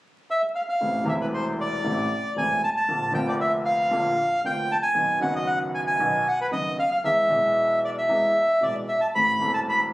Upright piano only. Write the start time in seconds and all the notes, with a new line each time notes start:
0.80 A1 A2 C3 E3 A3 E4
1.04 E1 E2 C3 E3 A3
1.08 E4
1.84 A1 A2 C3 E3 A3 E4
2.36 E1 E2 C3 E3 A3 E4
2.88 A#1 A#2 D3 F3 A#3 F4
3.12 F1 F2 D3 F3 A#3 F4
3.91 A#1 A#2 D3 F3 A#3 F4
4.44 F1 F2 D3 F3 A#3 F4
4.95 B1 B2 D#3 F#3 B3 F#4
5.20 F#1 F#2 D#3 F#3 B3 F#4
5.99 B1 B2 D#3 F#3 B3 F#4
6.51 F#1 F#2 D#3 F#3 B3 F#4
7.04 E2 E3 G#3 B3 G#4
7.28 B1 B2 E3 G#3 B3 G#4
8.09 E2 E3 G#3 B3 G#4
8.61 B1 B2 E3 G#3 B3 G#4
9.15 A1 A2 E3 A3 C4 A4
9.39 E1 E2 E3 A3 C4 A4